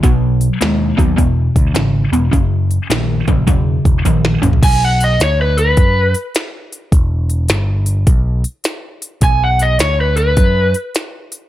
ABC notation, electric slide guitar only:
X:1
M:4/4
L:1/8
Q:"Swing" 1/4=104
K:E
V:1 name="Electric slide guitar"
z8 | z8 | (3g f d (3c B B- B z3 | z8 |
(3g f d (3c B B- B z3 |]